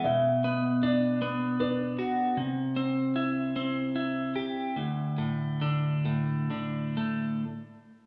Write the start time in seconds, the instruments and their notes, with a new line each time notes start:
0.04 clean electric guitar B2, felt piano E5
0.44 clean electric guitar B3
0.82 clean electric guitar D4, felt piano D5
1.22 clean electric guitar B3
1.60 clean electric guitar D4, felt piano B4
1.99 clean electric guitar F#4
2.37 clean electric guitar C3
2.76 clean electric guitar C4
3.16 clean electric guitar E4
3.56 clean electric guitar C4
3.96 clean electric guitar E4
4.36 clean electric guitar G4
4.76 clean electric guitar D2
5.18 clean electric guitar A2
5.62 clean electric guitar D3
6.05 clean electric guitar A2
6.51 clean electric guitar D3
6.97 clean electric guitar A3